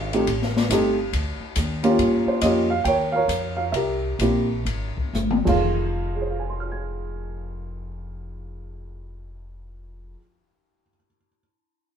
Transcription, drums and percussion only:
0, 0, Header, 1, 2, 480
1, 0, Start_track
1, 0, Key_signature, -4, "minor"
1, 0, Tempo, 429492
1, 311, Time_signature, 4, 2, 24, 8
1, 3191, Tempo, 452148
1, 5111, Tempo, 488599
1, 6071, Tempo, 504626
1, 12085, End_track
2, 0, Start_track
2, 0, Title_t, "Drums"
2, 147, Note_on_c, 9, 51, 47
2, 259, Note_off_c, 9, 51, 0
2, 304, Note_on_c, 9, 51, 54
2, 416, Note_off_c, 9, 51, 0
2, 470, Note_on_c, 9, 38, 28
2, 582, Note_off_c, 9, 38, 0
2, 632, Note_on_c, 9, 38, 45
2, 744, Note_off_c, 9, 38, 0
2, 788, Note_on_c, 9, 44, 57
2, 788, Note_on_c, 9, 51, 69
2, 899, Note_off_c, 9, 44, 0
2, 899, Note_off_c, 9, 51, 0
2, 1267, Note_on_c, 9, 51, 56
2, 1378, Note_off_c, 9, 51, 0
2, 1739, Note_on_c, 9, 44, 62
2, 1739, Note_on_c, 9, 51, 66
2, 1851, Note_off_c, 9, 44, 0
2, 1851, Note_off_c, 9, 51, 0
2, 2052, Note_on_c, 9, 51, 45
2, 2164, Note_off_c, 9, 51, 0
2, 2223, Note_on_c, 9, 51, 56
2, 2335, Note_off_c, 9, 51, 0
2, 2698, Note_on_c, 9, 44, 51
2, 2698, Note_on_c, 9, 51, 70
2, 2810, Note_off_c, 9, 44, 0
2, 2810, Note_off_c, 9, 51, 0
2, 3187, Note_on_c, 9, 51, 51
2, 3294, Note_off_c, 9, 51, 0
2, 3653, Note_on_c, 9, 44, 49
2, 3653, Note_on_c, 9, 51, 59
2, 3759, Note_off_c, 9, 44, 0
2, 3759, Note_off_c, 9, 51, 0
2, 4129, Note_on_c, 9, 51, 51
2, 4235, Note_off_c, 9, 51, 0
2, 4613, Note_on_c, 9, 44, 49
2, 4613, Note_on_c, 9, 51, 54
2, 4719, Note_off_c, 9, 44, 0
2, 4719, Note_off_c, 9, 51, 0
2, 5111, Note_on_c, 9, 51, 49
2, 5209, Note_off_c, 9, 51, 0
2, 5418, Note_on_c, 9, 36, 42
2, 5516, Note_off_c, 9, 36, 0
2, 5585, Note_on_c, 9, 44, 51
2, 5589, Note_on_c, 9, 48, 40
2, 5683, Note_off_c, 9, 44, 0
2, 5687, Note_off_c, 9, 48, 0
2, 5742, Note_on_c, 9, 47, 50
2, 5841, Note_off_c, 9, 47, 0
2, 5899, Note_on_c, 9, 36, 47
2, 5903, Note_on_c, 9, 49, 53
2, 5997, Note_off_c, 9, 36, 0
2, 6001, Note_off_c, 9, 49, 0
2, 12085, End_track
0, 0, End_of_file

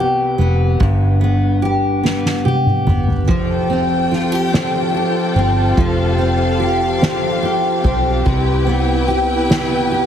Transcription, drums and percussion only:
0, 0, Header, 1, 2, 480
1, 0, Start_track
1, 0, Tempo, 828043
1, 467, Time_signature, 6, 3, 24, 8
1, 5832, End_track
2, 0, Start_track
2, 0, Title_t, "Drums"
2, 229, Note_on_c, 9, 51, 44
2, 287, Note_off_c, 9, 51, 0
2, 466, Note_on_c, 9, 36, 114
2, 467, Note_on_c, 9, 51, 60
2, 524, Note_off_c, 9, 36, 0
2, 525, Note_off_c, 9, 51, 0
2, 701, Note_on_c, 9, 51, 46
2, 759, Note_off_c, 9, 51, 0
2, 943, Note_on_c, 9, 51, 37
2, 1001, Note_off_c, 9, 51, 0
2, 1189, Note_on_c, 9, 38, 58
2, 1247, Note_off_c, 9, 38, 0
2, 1309, Note_on_c, 9, 38, 56
2, 1367, Note_off_c, 9, 38, 0
2, 1424, Note_on_c, 9, 48, 69
2, 1482, Note_off_c, 9, 48, 0
2, 1544, Note_on_c, 9, 47, 73
2, 1602, Note_off_c, 9, 47, 0
2, 1664, Note_on_c, 9, 45, 97
2, 1722, Note_off_c, 9, 45, 0
2, 1786, Note_on_c, 9, 43, 91
2, 1844, Note_off_c, 9, 43, 0
2, 1906, Note_on_c, 9, 36, 115
2, 1906, Note_on_c, 9, 51, 63
2, 1964, Note_off_c, 9, 36, 0
2, 1964, Note_off_c, 9, 51, 0
2, 2144, Note_on_c, 9, 51, 46
2, 2202, Note_off_c, 9, 51, 0
2, 2388, Note_on_c, 9, 51, 38
2, 2393, Note_on_c, 9, 38, 30
2, 2446, Note_off_c, 9, 51, 0
2, 2451, Note_off_c, 9, 38, 0
2, 2631, Note_on_c, 9, 51, 79
2, 2633, Note_on_c, 9, 38, 111
2, 2689, Note_off_c, 9, 51, 0
2, 2691, Note_off_c, 9, 38, 0
2, 2873, Note_on_c, 9, 51, 38
2, 2931, Note_off_c, 9, 51, 0
2, 3111, Note_on_c, 9, 51, 43
2, 3169, Note_off_c, 9, 51, 0
2, 3346, Note_on_c, 9, 51, 65
2, 3347, Note_on_c, 9, 36, 117
2, 3404, Note_off_c, 9, 51, 0
2, 3405, Note_off_c, 9, 36, 0
2, 3585, Note_on_c, 9, 51, 46
2, 3643, Note_off_c, 9, 51, 0
2, 3831, Note_on_c, 9, 51, 39
2, 3889, Note_off_c, 9, 51, 0
2, 4071, Note_on_c, 9, 51, 76
2, 4073, Note_on_c, 9, 38, 112
2, 4129, Note_off_c, 9, 51, 0
2, 4131, Note_off_c, 9, 38, 0
2, 4313, Note_on_c, 9, 51, 36
2, 4371, Note_off_c, 9, 51, 0
2, 4548, Note_on_c, 9, 36, 99
2, 4552, Note_on_c, 9, 51, 47
2, 4606, Note_off_c, 9, 36, 0
2, 4610, Note_off_c, 9, 51, 0
2, 4789, Note_on_c, 9, 36, 107
2, 4789, Note_on_c, 9, 51, 68
2, 4847, Note_off_c, 9, 36, 0
2, 4847, Note_off_c, 9, 51, 0
2, 5025, Note_on_c, 9, 51, 51
2, 5083, Note_off_c, 9, 51, 0
2, 5270, Note_on_c, 9, 51, 37
2, 5328, Note_off_c, 9, 51, 0
2, 5509, Note_on_c, 9, 51, 81
2, 5511, Note_on_c, 9, 38, 112
2, 5567, Note_off_c, 9, 51, 0
2, 5569, Note_off_c, 9, 38, 0
2, 5751, Note_on_c, 9, 51, 37
2, 5809, Note_off_c, 9, 51, 0
2, 5832, End_track
0, 0, End_of_file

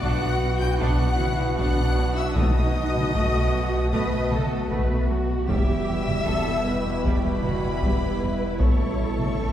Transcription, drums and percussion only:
0, 0, Header, 1, 2, 480
1, 0, Start_track
1, 0, Tempo, 779221
1, 1460, Time_signature, 4, 2, 24, 8
1, 5866, End_track
2, 0, Start_track
2, 0, Title_t, "Taiko and cinematic ensemble drums"
2, 17, Note_on_c, 9, 41, 78
2, 79, Note_off_c, 9, 41, 0
2, 496, Note_on_c, 9, 41, 86
2, 558, Note_off_c, 9, 41, 0
2, 739, Note_on_c, 9, 47, 62
2, 801, Note_off_c, 9, 47, 0
2, 977, Note_on_c, 9, 41, 93
2, 1039, Note_off_c, 9, 41, 0
2, 1457, Note_on_c, 9, 41, 119
2, 1519, Note_off_c, 9, 41, 0
2, 1820, Note_on_c, 9, 47, 53
2, 1881, Note_off_c, 9, 47, 0
2, 1941, Note_on_c, 9, 41, 83
2, 2003, Note_off_c, 9, 41, 0
2, 2420, Note_on_c, 9, 41, 92
2, 2481, Note_off_c, 9, 41, 0
2, 2660, Note_on_c, 9, 47, 62
2, 2721, Note_off_c, 9, 47, 0
2, 2900, Note_on_c, 9, 41, 85
2, 2962, Note_off_c, 9, 41, 0
2, 3380, Note_on_c, 9, 41, 102
2, 3442, Note_off_c, 9, 41, 0
2, 3739, Note_on_c, 9, 47, 50
2, 3800, Note_off_c, 9, 47, 0
2, 3860, Note_on_c, 9, 41, 77
2, 3921, Note_off_c, 9, 41, 0
2, 4338, Note_on_c, 9, 41, 87
2, 4400, Note_off_c, 9, 41, 0
2, 4579, Note_on_c, 9, 47, 59
2, 4641, Note_off_c, 9, 47, 0
2, 4819, Note_on_c, 9, 41, 86
2, 4880, Note_off_c, 9, 41, 0
2, 5296, Note_on_c, 9, 41, 109
2, 5358, Note_off_c, 9, 41, 0
2, 5659, Note_on_c, 9, 47, 51
2, 5721, Note_off_c, 9, 47, 0
2, 5779, Note_on_c, 9, 41, 74
2, 5841, Note_off_c, 9, 41, 0
2, 5866, End_track
0, 0, End_of_file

